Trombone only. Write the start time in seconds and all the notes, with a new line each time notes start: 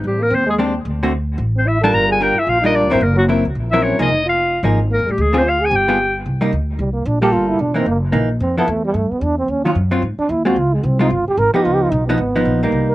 0.04 G3
0.20 A#3
0.30 C4
0.46 G#3
1.56 C4
1.66 E4
1.81 A4
1.94 A#4
2.08 G#4
2.20 G4
2.36 E4
2.46 F4
2.62 D#4
2.74 D4
2.90 C4
2.99 A#3
3.16 F#3
3.70 E4
3.83 C#4
3.99 D#4
4.26 F4
4.90 A#3
5.07 G3
5.18 G#3
5.34 C4
5.44 F4
5.60 G#4
5.71 G4
6.80 G3
6.93 A#3
7.06 D4
7.21 G4
7.32 F4
7.49 E4
7.61 D4
7.77 C4
7.88 A#3
8.41 C4
8.58 B3
8.70 A3
8.85 G3
8.96 A3
9.11 B3
9.23 D4
9.39 C4
9.50 C#4
9.64 F4
10.19 D4
10.30 E4
10.45 F#4
10.59 F4
10.74 G#3
10.85 C4
11.01 D#4
11.11 F4
11.28 G4
11.38 A#4
11.54 G4
11.65 F4
11.75 G4
11.83 F4
11.91 D#4
12.07 B3
12.89 A#4